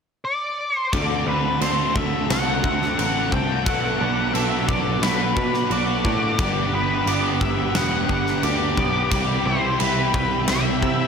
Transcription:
0.25 lead electric guitar D5
0.78 lead electric guitar C5
0.92 picked electric bass D2, overdriven electric guitar D3 A3 C4 F#4 A4, analog synth pad A4 A5 D6, lead electric guitar D5, kick, crash
1.26 picked electric bass D2, overdriven electric guitar A3 C4 F#4, lead electric guitar B4
1.61 picked electric bass D2, overdriven electric guitar D3 A3 C4 F#4, lead electric guitar C5, crash
1.95 picked electric bass D2, overdriven electric guitar A3 C4 F#4, lead electric guitar E5, kick
2.28 picked electric bass C2, overdriven electric guitar D3 A3 C4 F#4, lead electric guitar F#5, snare, crash
2.63 picked electric bass D2, overdriven electric guitar A3 C4 F#4, kick
2.82 snare
2.97 picked electric bass A1, overdriven electric guitar D3 A3 C4 F#4, lead electric guitar F#5, crash
3.31 picked electric bass C2, overdriven electric guitar A3 C4 F#4, lead electric guitar G5, kick
3.65 picked electric bass B1, overdriven electric guitar B2 F#3 B3 D4 F#4, clean electric guitar A3, lead electric guitar F#5, analog synth pad F#5 B5, kick, crash
3.98 picked electric bass B1, overdriven electric guitar B3 D4 F#4
4.32 picked electric bass B1, overdriven electric guitar F#3 B3 D4 F#4, clean electric guitar A3, lead electric guitar E5, crash
4.67 picked electric bass B1, clean electric guitar A3, overdriven electric guitar B3 D4 F#4, lead electric guitar D5, kick
5.02 picked electric bass B1, overdriven electric guitar B2 F#3 B3 D4 F#4, clean electric guitar A3, lead electric guitar B4, snare, crash
5.36 picked electric bass B2, overdriven electric guitar B3 D4 F#4, kick
5.54 snare
5.70 picked electric bass B1, overdriven electric guitar F#3 B3 D4 F#4, lead electric guitar D5, crash
6.05 picked electric bass A2, clean electric guitar A3, overdriven electric guitar B3 D4 F#4, kick
6.38 picked electric bass G1, overdriven electric guitar G2 D3 G3 B3 D4 G4, analog synth pad G4, lead electric guitar D5, kick, crash
6.72 picked electric bass G1, overdriven electric guitar G3 B3 D4 G4, lead electric guitar B4
7.06 picked electric bass G1, overdriven electric guitar G3 B3 D4 G4, lead electric guitar D5, crash
7.41 picked electric bass G1, overdriven electric guitar G3 B3 D4 G4, lead electric guitar E5, kick
7.75 picked electric bass E1, overdriven electric guitar G2 D3 G3 B3 D4 G4, lead electric guitar F#5, snare, crash
8.09 picked electric bass G1, overdriven electric guitar G3 B3 D4 G4, kick
8.27 snare
8.43 picked electric bass D2, overdriven electric guitar G3 B3 D4 G4, lead electric guitar D5, crash
8.77 picked electric bass B1, overdriven electric guitar G3 B3 D4 G4, kick
9.10 picked electric bass C2, overdriven electric guitar C3 E3 G3 C4 E4 G4, lead electric guitar D5, analog synth pad E5 G5, kick, crash
9.45 picked electric bass C2, overdriven electric guitar G3 E4 G4, lead electric guitar C5
9.79 picked electric bass C2, overdriven electric guitar E3 G3 E4 G4, lead electric guitar B4, crash
10.13 picked electric bass C2, overdriven electric guitar G3 E4 G4, kick
10.48 picked electric bass C2, overdriven electric guitar C3 E3 G3 E4 G4, lead electric guitar E5, snare, crash
10.82 picked electric bass C3, overdriven electric guitar G3 E4 G4, kick

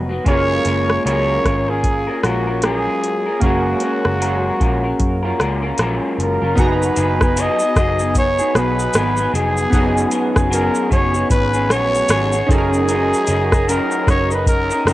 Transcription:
Already playing: picked electric bass F1, clean electric guitar G#2 D#3 F#3, synth keys B3 D#4 F#4 A#5
0.09 clean electric guitar F#3 B3 F#4
0.24 picked electric bass F#1, clean electric guitar F#3 G#3 C#4 F4 A#4, synth keys G#3 C#4 F5, trumpet C#5, kick, closed hi-hat
0.30 synth keys A#3 G#4
0.65 picked electric bass F#1, clean electric guitar G#3 C#4 F4 A#4, closed hi-hat
0.90 cross-stick
1.05 picked electric bass C#2, clean electric guitar F#3 G#3 C#4 F4 A#4, trumpet C#5, closed hi-hat
1.44 picked electric bass G#1, clean electric guitar G#3 C#4 F4 A#4, kick, cross-stick, closed hi-hat
1.68 clean electric guitar C#4 F4 A#4, trumpet G#4
1.84 kick, closed hi-hat
2.07 clean electric guitar C#4 F4 A#4
2.23 picked electric bass A#1, clean electric guitar G#3 C#4 F4 A#4, trumpet F#4, cross-stick, closed hi-hat
2.47 clean electric guitar C#4 F4 A#4
2.62 clean electric guitar F#3 G#3 C#4 F4 A#4, trumpet G#4, cross-stick, closed hi-hat
3.04 closed hi-hat
3.26 clean electric guitar C#4 F4 A#4
3.40 picked electric bass F#1, clean electric guitar F#3 G#3 C#4 A#4, synth keys A#3 C#4 F5, trumpet F#4, kick, closed hi-hat
3.45 synth keys G#4
3.80 clean electric guitar G#3 C#4 A#4, closed hi-hat
4.05 picked electric bass F#1, cross-stick
4.20 clean electric guitar F#3 G#3 C#4 A#4, closed hi-hat
4.60 picked electric bass A#1, clean electric guitar G#3 C#4 F4 A#4, kick, closed hi-hat
4.84 clean electric guitar C#4 A#4
4.99 picked electric bass F#2, kick, closed hi-hat
5.23 clean electric guitar C#4 F4 A#4
5.39 picked electric bass C#2, clean electric guitar G#3 C#4 F4 A#4, cross-stick, closed hi-hat
5.62 clean electric guitar C#4 F4 A#4
5.78 picked electric bass A#1, clean electric guitar F#3 G#3 C#4 F4 A#4, cross-stick, closed hi-hat
6.18 picked electric bass F#1, trumpet A#4, closed hi-hat
6.42 picked electric bass F#1, clean electric guitar C#4 F4 A#4
6.55 picked electric bass F#1, clean electric guitar F#3 B3 D#4 G#4, synth keys B3 D#4 F#4, ambient pad B3 F#5 G#5 D#6, kick, closed hi-hat, shaker
6.60 trumpet B4, synth keys A#5
6.82 shaker
6.96 picked electric bass F#1, clean electric guitar F#3 B3 D#4 G#4, closed hi-hat, shaker
7.20 clean electric guitar B3 D#4 G#4, kick, cross-stick, shaker
7.36 clean electric guitar F#3 B3 D#4 G#4, closed hi-hat, shaker
7.41 trumpet D#5
7.59 clean electric guitar B3 D#4 G#4, shaker
7.76 picked electric bass F#1, clean electric guitar F#3 B3 D#4 G#4, kick, cross-stick, closed hi-hat, shaker
7.99 clean electric guitar B3 D#4 G#4, shaker
8.15 trumpet C#5, kick, closed hi-hat, shaker
8.39 clean electric guitar B3 D#4 G#4, shaker
8.55 picked electric bass B1, clean electric guitar F#3 B3 D#4 G#4, trumpet B4, cross-stick, closed hi-hat, shaker
8.79 shaker
8.94 picked electric bass G#1, clean electric guitar F#3 B3 D#4 G#4, cross-stick, closed hi-hat, shaker
9.17 clean electric guitar B3 D#4 G#4, shaker
9.33 picked electric bass F1, clean electric guitar F#3 B3 D#4 G#4, trumpet G#4, closed hi-hat, shaker
9.57 shaker
9.70 picked electric bass F#1, clean electric guitar F#3 B3 C#4, synth keys B3 D#4 F#4, ambient pad F#5 C#6, kick, closed hi-hat, shaker
9.75 clean electric guitar G#4, synth keys G#4
9.98 shaker
10.11 clean electric guitar F#3 B3 C#4 G#4, closed hi-hat, shaker
10.35 picked electric bass F#1, clean electric guitar B3 C#4 G#4, kick, cross-stick, shaker
10.50 clean electric guitar F#3 B3 C#4 G#4, trumpet A#4, closed hi-hat, shaker
10.75 shaker
10.90 picked electric bass F#1, clean electric guitar F#3 B3 C#4 G#4, trumpet C#5, kick, closed hi-hat, shaker
11.14 clean electric guitar B3 C#4 G#4, shaker
11.30 picked electric bass G#1, trumpet B4, kick, closed hi-hat, shaker
11.54 clean electric guitar B3 C#4 G#4, shaker
11.69 picked electric bass A#1, clean electric guitar F#3 B3 C#4 G#4, trumpet C#5, cross-stick, closed hi-hat, shaker
11.95 shaker
12.09 picked electric bass G#1, clean electric guitar F#3 B3 C#4 G#4, cross-stick, closed hi-hat, shaker
12.33 clean electric guitar B3 C#4 G#4, shaker
12.46 picked electric bass F#1, clean electric guitar F#3 C#4, synth keys C#4 D#4 G#4, ambient pad C#5 F#5 A#5 D#6, kick
12.51 clean electric guitar D#4 A#4, trumpet G#4, synth keys A4, closed hi-hat, shaker
12.58 synth keys A#4
12.74 shaker
12.89 clean electric guitar F#3 C#4 D#4 A#4, closed hi-hat, shaker
13.14 shaker
13.27 picked electric bass F#1, clean electric guitar F#3 C#4 D#4 A#4, closed hi-hat, shaker
13.51 clean electric guitar C#4 D#4 A#4, kick, cross-stick, shaker
13.68 clean electric guitar F#3 C#4 D#4 A#4, trumpet A#4, closed hi-hat, shaker
13.91 shaker
14.07 picked electric bass F#1, clean electric guitar F#3 C#4 D#4 A#4, trumpet C#5, kick, cross-stick, closed hi-hat, shaker
14.30 clean electric guitar C#4 D#4 A#4, trumpet B4, shaker
14.47 trumpet A#4, kick, closed hi-hat, shaker
14.70 clean electric guitar C#4 D#4 A#4, shaker
14.85 picked electric bass F#1, clean electric guitar F#3 C#4 D#4 A#4, cross-stick, closed hi-hat, shaker

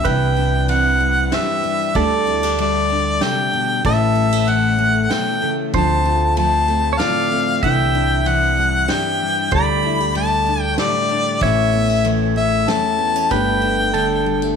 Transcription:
Already playing: steel-string acoustic guitar B3 D4 G4
0.05 upright bass C2, steel-string acoustic guitar C3 E3 G3 D4 E4, pedal steel guitar B4, harmonica G5, kick, ride
0.37 steel-string acoustic guitar D4
0.68 steel-string acoustic guitar E3 C4, harmonica F#5, ride
1.00 steel-string acoustic guitar G3 D4
1.32 steel-string acoustic guitar G2 D4 G4, harmonica E5, snare, ride
1.64 steel-string acoustic guitar G3 D4
1.95 upright bass D2, steel-string acoustic guitar D3 A3 D4 G4, pedal steel guitar A4, harmonica D5, kick, ride
2.27 steel-string acoustic guitar C4 E4
2.43 steel-string acoustic guitar D4 G4
2.58 steel-string acoustic guitar G3 A3, harmonica D5, ride
2.90 steel-string acoustic guitar D4
3.21 steel-string acoustic guitar C3 G4, harmonica G5, snare, ride
3.53 steel-string acoustic guitar B2 D4
3.85 upright bass A1, steel-string acoustic guitar A2 E3 A3 C#4 E4, pedal steel guitar A4, harmonica E5, kick, ride
4.15 steel-string acoustic guitar G3 C#4
4.32 steel-string acoustic guitar A3
4.48 steel-string acoustic guitar E3, harmonica F#5, ride
4.79 steel-string acoustic guitar A3
5.10 steel-string acoustic guitar B2 C#4, harmonica G5, snare, ride
5.42 steel-string acoustic guitar C#3 A3
5.73 upright bass D2, steel-string acoustic guitar D3 F3 C4 F4, pedal steel guitar C5, harmonica A5, kick, ride
6.05 steel-string acoustic guitar A3 F4
6.37 steel-string acoustic guitar F3 A3, harmonica A5, ride
6.68 steel-string acoustic guitar A3 C4
6.93 pedal steel guitar C#5
6.99 steel-string acoustic guitar A2 C4 F4, pedal steel guitar D5, harmonica F5, snare, ride
7.32 steel-string acoustic guitar A3 C4
7.63 upright bass C2, steel-string acoustic guitar C3 E3 G3 D4 E4, pedal steel guitar E5, harmonica G5, kick, ride
7.95 steel-string acoustic guitar D4
8.26 steel-string acoustic guitar E3 C4, harmonica F#5, ride
8.57 steel-string acoustic guitar G3 D4
8.88 steel-string acoustic guitar G2 D4 G4, harmonica G5, snare, ride
9.20 steel-string acoustic guitar G3 D4
9.51 upright bass D2, steel-string acoustic guitar D3 A3 D4 G4, pedal steel guitar D5, harmonica B5, kick, ride
9.83 steel-string acoustic guitar D4 E4
10.00 steel-string acoustic guitar G4
10.15 steel-string acoustic guitar G3 A3, harmonica A5, ride
10.47 steel-string acoustic guitar D4
10.62 harmonica G5
10.78 steel-string acoustic guitar A2 G4, pedal steel guitar C5, harmonica D5, snare, ride
11.09 steel-string acoustic guitar D4
11.41 upright bass A1, steel-string acoustic guitar A2 E3 A3 C#4, pedal steel guitar C#5, harmonica E5, kick, ride
11.45 steel-string acoustic guitar E4
11.73 steel-string acoustic guitar B3 C#4
11.90 steel-string acoustic guitar C#4
12.05 steel-string acoustic guitar E3 A3, ride
12.36 steel-string acoustic guitar A3 C#4, harmonica E5
12.68 steel-string acoustic guitar E2 C#4 A4, harmonica A5, snare, ride
12.99 steel-string acoustic guitar A3 B3
13.16 steel-string acoustic guitar C#4
13.31 upright bass G1, steel-string acoustic guitar G2 A3 D4 G4, pedal steel guitar B4, harmonica G5, kick, ride
13.62 steel-string acoustic guitar D4
13.94 steel-string acoustic guitar D3 A3, pedal steel guitar A4, ride
14.26 steel-string acoustic guitar G3 D4
14.42 steel-string acoustic guitar A3

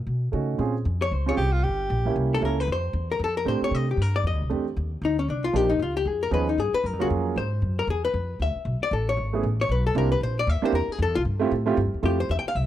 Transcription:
0.07 upright bass B2
0.32 upright bass C#3, grand piano A3 C#4 D#4 F#4
0.58 upright bass A#2, grand piano C4 C#4 F4 G#4
0.85 upright bass F2
1.02 hollow-body jazz guitar C#5
1.11 upright bass C#2, hollow-body jazz guitar C5
1.26 grand piano C4 C#4 F4 G#4, hollow-body jazz guitar C#5
1.37 upright bass C2, tenor saxophone G4
1.52 tenor saxophone F4
1.63 upright bass G1, tenor saxophone G4
1.90 upright bass A#1
2.05 grand piano A#3 C#4 E4 G4
2.16 upright bass C2
2.34 hollow-body jazz guitar A4
2.41 upright bass C#2, grand piano A#3 C#4 E4 A4
2.45 hollow-body jazz guitar A#4
2.60 hollow-body jazz guitar B4
2.67 upright bass F2
2.72 hollow-body jazz guitar C5
2.93 upright bass E2
3.12 hollow-body jazz guitar A#4
3.19 upright bass F2
3.24 hollow-body jazz guitar A4
3.37 hollow-body jazz guitar A#4
3.45 upright bass A2, grand piano A3 C4 D4 G4, hollow-body jazz guitar C5
3.61 hollow-body jazz guitar C#5, muted upright bass stroke
3.71 upright bass C3, hollow-body jazz guitar D#5
3.91 hollow-body jazz guitar G4
3.97 upright bass G2
4.02 hollow-body jazz guitar A#4
4.16 hollow-body jazz guitar D5
4.24 upright bass F2, hollow-body jazz guitar D#5
4.33 upright bass D2
4.42 upright bass C2
4.50 upright bass E2, grand piano A3 C4 D4 G4
4.77 upright bass D#2
5.02 upright bass D2, hollow-body jazz guitar D#4
5.19 hollow-body jazz guitar C#4
5.28 upright bass C2, hollow-body jazz guitar D4
5.44 hollow-body jazz guitar F4
5.53 upright bass A#1, grand piano F3 A#3 D4 D#4 G4, hollow-body jazz guitar G4
5.70 hollow-body jazz guitar D#4
5.79 upright bass C#2, hollow-body jazz guitar F4
5.97 hollow-body jazz guitar G4
6.05 upright bass F2, hollow-body jazz guitar G#4
6.23 hollow-body jazz guitar A#4
6.31 upright bass D#2, grand piano F3 B3 C#4 D#4 G#4, hollow-body jazz guitar B4
6.49 hollow-body jazz guitar D#4
6.58 upright bass G2, hollow-body jazz guitar G#4
6.73 hollow-body jazz guitar B4, muted upright bass stroke
6.84 upright bass F#2, hollow-body jazz guitar A#4
6.93 upright bass F2
6.99 upright bass C#2, grand piano F#3 A#3 C#4 F4 G#4, hollow-body jazz guitar F#4
7.10 upright bass F2
7.36 upright bass G#2, hollow-body jazz guitar C5
7.62 upright bass F#2
7.79 hollow-body jazz guitar A#4
7.87 upright bass E2, hollow-body jazz guitar G#4
8.05 hollow-body jazz guitar B4
8.14 upright bass F2
8.40 upright bass D2, hollow-body jazz guitar E5
8.55 muted upright bass stroke
8.65 upright bass B1
8.81 hollow-body jazz guitar D5, muted upright bass stroke
8.91 upright bass A1, hollow-body jazz guitar A4
9.09 hollow-body jazz guitar C#5
9.17 upright bass G#1
9.33 grand piano A3 B3 C#4 E4 G#4
9.43 upright bass A1
9.61 hollow-body jazz guitar C#5
9.69 upright bass B1, hollow-body jazz guitar B4
9.87 hollow-body jazz guitar A4
9.95 upright bass C2, grand piano A#3 C4 D4 E4 G4, hollow-body jazz guitar A#4
10.12 hollow-body jazz guitar B4
10.21 upright bass A#1, hollow-body jazz guitar C5
10.39 hollow-body jazz guitar D5
10.47 upright bass D#2, hollow-body jazz guitar E5
10.62 grand piano A#3 C4 D4 E4 G4, hollow-body jazz guitar C5, muted upright bass stroke
10.72 upright bass E2, hollow-body jazz guitar A#4
10.88 muted upright bass stroke
10.92 hollow-body jazz guitar G#4
10.99 upright bass F2, hollow-body jazz guitar A4
11.08 upright bass E2
11.15 upright bass C2, hollow-body jazz guitar F4
11.25 upright bass G2
11.39 grand piano A3 C4 E4 F4 G4
11.51 upright bass A2
11.66 grand piano A3 C4 E4 F4 G4
11.77 upright bass G2
11.86 upright bass F2
11.94 upright bass E2
12.03 upright bass F2, grand piano A3 C4 E4 F4 G4, hollow-body jazz guitar G4
12.20 hollow-body jazz guitar C5
12.29 upright bass E2, hollow-body jazz guitar E5
12.39 hollow-body jazz guitar G5
12.44 hollow-body jazz guitar F5, muted upright bass stroke
12.55 upright bass C2, hollow-body jazz guitar E5

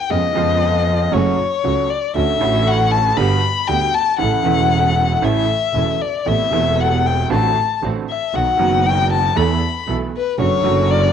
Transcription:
Already playing: violin G5
0.10 upright piano F2 C#3 F3 G#3 B3 F4, double bass F2, string section B3 C#4 F4, violin D#5
0.33 upright piano F2 C#3 F3 G#3 B3 F4, double bass F2, string section C#4 F4
0.37 string section B3
1.12 double bass F#1, upright piano F#2 C#3 F#3 A3 F#4, string section A3 C#4 F#4, violin C#5
1.64 double bass C#2, upright piano C#2 C#3 F#3 A3 F#4, string section A3 C#4 F#4
1.90 violin D5
2.15 double bass D2, upright piano D2 D3 A3 C#4 F#4, string section C#4 D4 F#4, violin E5
2.39 double bass A1, upright piano A1 A2 D3 A3 C#4, string section C#4 F#4
2.43 upright piano F#4
2.67 violin F#5
2.91 violin A5
3.17 upright piano G1 G2 D3 G3 B3 F#4, double bass G1, string section B3 F#4 G4, violin B5
3.68 double bass D2, upright piano D2 D3 G3 B3 F#4, string section B3 F#4 G4, violin G5
3.94 violin A5
4.18 upright piano A1 A2 C#3 E3 A3 E4, double bass A1, string section C#4 E4 A4, violin F#5
4.43 double bass E1, upright piano E1 E2 C#3 E3 A3 E4, string section C#4 E4 A4
5.17 violin F#5
5.22 double bass A1, upright piano A1 A2 C#3 E3 A3 E4, string section C#4 E4 A4, violin E5
5.74 double bass E1, upright piano E1 E2 C#3 E3 A3 E4, string section C#4 E4 A4
6.01 violin D5
6.26 upright piano A1 A2 C3 A3 B3 E4, double bass A1, string section B3 C4 A4, violin E5
6.50 upright piano E1 E2 C3 A3 B3 E4, double bass E1, string section B3 A4
6.80 violin F#5
7.06 violin G5
7.30 upright piano A1 A2 D3 A3 C4 F#4, double bass A1, string section C4 D4 F#4, violin A5
7.82 double bass A1, upright piano A1 A2 D3 A3 C4 F#4, string section C4 D4 F#4
8.10 violin E5
8.34 double bass B1, upright piano B1 B2 D#3 F#3 B3 F#4, string section B3 D#4 F#4, violin F#5
8.57 double bass F#1, upright piano F#1 F#2 D#3 F#3 B3, string section B3 D#4 F#4
8.61 upright piano F#4
8.86 violin G5
9.12 violin A5
9.36 double bass E2, upright piano E2 E3 A3 B3 A4, string section B3 E4 A4, violin B5
9.87 double bass B1, upright piano B1 B2 E3 A3 B3 A4, string section B3 E4 A4
10.17 violin B4
10.38 double bass F#1, upright piano F#2 D3 F#3 A3 C#4 F#4, string section C#4 D4 F#4, violin C#5
10.62 double bass F#1, upright piano F#2 D3 F#3 A3 C#4, string section C#4 F#4
10.66 upright piano F#4
10.91 violin D5

